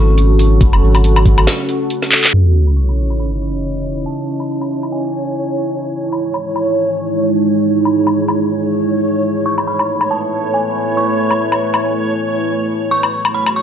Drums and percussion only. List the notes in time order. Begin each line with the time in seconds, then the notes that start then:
0.18 closed hi-hat
0.39 open hi-hat
0.61 kick, closed hi-hat
0.73 low woodblock
0.95 closed hi-hat, low woodblock
1.04 closed hi-hat
1.16 low woodblock
1.26 kick, closed hi-hat
1.38 low woodblock
1.47 snare, closed hi-hat
1.69 closed hi-hat
1.90 closed hi-hat
2.02 snare
2.12 clap, open hi-hat
2.24 clap
2.67 low woodblock
2.89 low woodblock
3.10 low woodblock
4.40 low woodblock
4.61 low woodblock
4.83 low woodblock
6.13 low woodblock
6.34 low woodblock
6.56 low woodblock
7.85 low woodblock
8.07 low woodblock
8.28 low woodblock
9.58 low woodblock
9.79 low woodblock
10.01 low woodblock
11.31 low woodblock
11.52 low woodblock
11.74 low woodblock
13.03 low woodblock
13.25 low woodblock
13.47 low woodblock